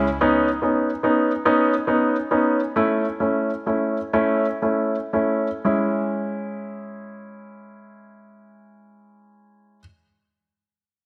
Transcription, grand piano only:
0.21 0.48 B3 medium
0.21 0.48 C#4 medium
0.21 0.48 D#4 medium
0.62 0.89 B3 soft
0.62 0.89 C#4 soft
0.62 0.89 D#4 soft
1.03 1.30 B3 medium
1.03 1.31 C#4 soft
1.03 1.31 D#4 medium
1.45 1.73 B3 medium
1.45 1.73 C#4 medium
1.45 1.73 D#4 medium
1.87 2.15 B3 medium
1.87 2.16 C#4 soft
1.87 2.16 D#4 medium
2.31 2.59 B3 medium
2.31 2.59 C#4 soft
2.31 2.59 D#4 medium
2.76 3.04 A3 medium
2.76 3.04 C#4 soft
2.76 3.05 E4 medium
3.20 3.49 A3 soft
3.20 3.50 C#4 soft
3.20 3.50 E4 soft
3.66 3.96 A3 soft
3.66 3.97 C#4 soft
3.66 3.97 E4 soft
4.13 4.45 A3 medium
4.13 4.45 C#4 medium
4.13 4.45 E4 medium
4.62 4.95 A3 soft
4.62 4.95 C#4 soft
4.62 4.95 E4 soft
5.13 5.47 A3 soft
5.13 5.47 C#4 soft
5.13 5.47 E4 soft
5.64 9.80 G#3 soft
5.64 9.80 C#4 soft
5.64 9.80 E4 medium

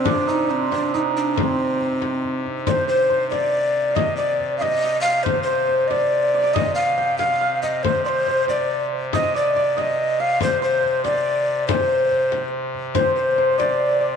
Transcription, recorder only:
0.07 0.28 D4 medium
0.28 0.52 D#4 medium
0.51 0.72 C4 medium
0.73 0.92 D4 medium
0.94 1.00 D#4 medium
1.17 1.38 D4 medium
1.38 1.44 D4 medium
1.43 2.46 C4 medium
2.67 2.87 C5 medium
2.67 2.72 D5 medium
2.88 3.29 C5 medium
3.30 3.97 D5 medium
3.95 4.16 D#5 medium
4.17 4.57 D5 medium
4.58 4.63 F5 medium
4.62 5.00 D#5 loud
5.01 5.25 F5 loud
5.23 5.42 C5 medium
5.43 5.89 C5 medium
5.88 6.55 D5 medium
5.88 5.92 D#5 medium
6.54 6.74 D#5 medium
6.75 7.16 F5 medium
7.18 7.59 F5 medium
7.62 7.84 D#5 medium
7.83 8.04 C5 medium
8.05 8.45 C5 medium
8.05 8.10 D5 medium
8.49 8.85 D5 medium
9.14 9.33 D#5 medium
9.36 9.81 D5 medium
9.79 10.22 D#5 medium
10.20 10.41 F5 loud
10.42 10.61 C5 medium
10.63 11.02 C5 medium
11.04 11.64 D5 medium
11.67 12.49 C5 medium
12.95 13.15 C5 medium
13.16 13.56 C5 medium
13.59 14.16 D5 medium

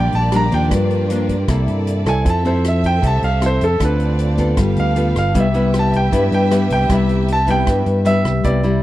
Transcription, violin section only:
0.00 2.23 A#3 medium
0.00 1.47 G4 medium
0.00 1.46 D5 medium
0.71 1.48 F4 medium
1.48 2.25 E4 medium
1.48 2.24 A4 medium
1.48 2.25 D5 medium
2.25 3.78 C4 medium
2.25 4.55 A4 medium
2.25 3.79 E5 medium
3.81 4.57 C4 medium
3.81 4.57 F4 medium
3.81 4.57 D5 medium
4.57 5.34 B3 medium
4.57 5.33 G4 medium
4.57 5.34 A4 medium
4.57 5.34 F5 medium
5.35 8.41 G4 medium
5.35 8.41 B4 medium
5.35 8.41 E5 medium

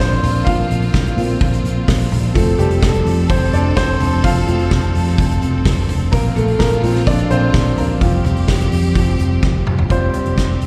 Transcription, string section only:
0.00 2.32 A#3 medium
0.00 9.86 C4 medium
0.00 2.31 F4 medium
2.35 6.09 F3 medium
2.35 6.09 A4 medium
6.13 8.00 A#3 medium
6.13 7.99 F4 medium
8.00 9.88 F3 medium
8.00 9.88 G4 medium
9.90 10.67 F3 medium
9.90 10.67 C4 medium
9.90 10.67 G4 medium

